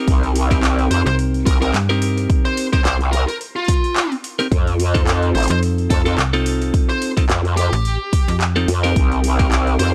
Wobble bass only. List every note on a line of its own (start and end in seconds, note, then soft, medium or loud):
0.08 0.89 C2 medium
0.91 1.04 F2 loud
1.46 1.72 C2 loud
2.85 3.26 C2 loud
4.51 5.33 F2 medium
5.35 5.48 A1 loud
5.90 6.16 F2 loud
7.29 7.70 F2 loud
8.68 8.94 F2 loud
8.96 9.78 C2 loud
9.80 9.93 F2 loud